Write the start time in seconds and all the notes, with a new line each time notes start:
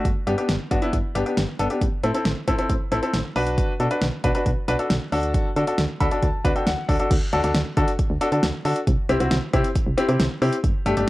0.05 G1, kick, closed hi-hat
0.27 G2 B3 D4 G4, closed hi-hat
0.38 B3 D4 G4, closed hi-hat
0.49 G1, snare, closed hi-hat
0.71 G1 B3 D4 F#4, kick, closed hi-hat
0.82 B3 D4 E4, closed hi-hat
0.93 G1, kick, closed hi-hat
1.15 G1 B3 D4 G4, closed hi-hat
1.26 B3 D4 G4, closed hi-hat
1.37 G1, snare, closed hi-hat
1.59 G1 B3 D4 A4, closed hi-hat
1.70 B3 D4 G4, closed hi-hat
1.81 A1, kick, closed hi-hat
2.03 A2 C4 E4 A4, closed hi-hat
2.14 C4 E4 A4, closed hi-hat
2.25 A1, snare, closed hi-hat
2.48 A1 C4 E4 A4, kick, closed hi-hat
2.58 C4 E4 A4, closed hi-hat
2.69 A1, kick, closed hi-hat
2.92 A1 C4 E4 A4, closed hi-hat
3.03 C4 E4 A4, closed hi-hat
3.14 A1, snare, closed hi-hat
3.36 B1 D4 F#4 B4, open hi-hat
3.47 closed hi-hat
3.58 kick, closed hi-hat
3.80 B2 D4 F#4 A4, closed hi-hat
3.91 D4 F#4 B4, closed hi-hat
4.02 B1, snare, closed hi-hat
4.24 B1 D4 F#4 B4, kick, closed hi-hat
4.35 D4 F#4 B4, closed hi-hat
4.46 B1, kick, closed hi-hat
4.68 B1 D4 F#4 B4, closed hi-hat
4.79 D4 F#4 A4, closed hi-hat
4.90 B1, snare, closed hi-hat
5.12 D2 D4 F#4 A4, open hi-hat
5.23 closed hi-hat
5.34 kick, closed hi-hat
5.56 D3 D4 F#4 A4, closed hi-hat
5.67 D4 F#4 A4, closed hi-hat
5.78 D2, snare, closed hi-hat
6.00 D2 D4 F#4 A4 B5, kick, closed hi-hat
6.11 D4 F#4 A4, closed hi-hat
6.22 D2 A5, kick, closed hi-hat
6.45 D2 D4 F#4 B4, kick, closed hi-hat
6.56 D4 F#4 A4 G5, closed hi-hat
6.67 D2 F#5, snare, closed hi-hat
6.89 D2 D4 F#4 A4, kick, open hi-hat
7.00 D4 F#4 A4, closed hi-hat
7.11 D2, kick, closed hi-hat, crash
7.33 D2 D4 F#4 A4, closed hi-hat
7.44 D2 D4 F#4 A4, closed hi-hat
7.54 D2, snare, closed hi-hat
7.77 D3 D4 F#4 A4, kick, closed hi-hat
7.88 closed hi-hat
7.99 kick, closed hi-hat
8.10 D2
8.21 D4 F#4 A4, closed hi-hat
8.32 D3 D4 F#4 A4, closed hi-hat
8.43 D2, snare, closed hi-hat
8.65 D3 D4 F#4 A4, open hi-hat
8.76 closed hi-hat
8.87 C2, kick, closed hi-hat
9.09 C2 C4 E4 G4, closed hi-hat
9.20 C2 C4 E4 F#4, closed hi-hat
9.31 C2, snare, closed hi-hat
9.53 C3 C4 E4 G4, kick, closed hi-hat
9.64 closed hi-hat
9.75 kick, closed hi-hat
9.87 C2
9.98 C4 E4 G4, closed hi-hat
10.09 C3 C4 E4 G4, closed hi-hat
10.20 C2, snare, closed hi-hat
10.42 C3 C4 E4 G4, open hi-hat
10.52 closed hi-hat
10.64 G1, kick, closed hi-hat
10.86 G1 A3 D4 G4, closed hi-hat
10.97 G1 A3 D4 G4, closed hi-hat